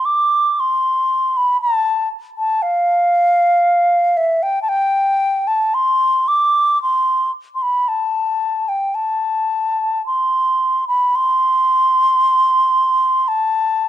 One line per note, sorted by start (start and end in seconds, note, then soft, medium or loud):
0.05 0.61 D6 medium
0.60 1.38 C6 medium
1.37 1.61 B5 medium
1.61 2.09 A5 medium
2.38 2.64 A5 medium
2.62 4.18 F5 medium
4.17 4.44 E5 medium
4.43 4.62 G5 medium
4.62 4.70 A5 medium
4.69 5.49 G5 medium
5.47 5.76 A5 medium
5.74 6.30 C6 medium
6.28 6.81 D6 medium
6.83 7.31 C6 medium
7.55 7.64 C6 medium
7.62 7.90 B5 medium
7.88 8.70 A5 medium
8.68 8.96 G5 medium
8.95 10.05 A5 medium
10.06 10.85 C6 medium
10.88 11.17 B5 medium
11.15 13.30 C6 medium
13.28 13.88 A5 medium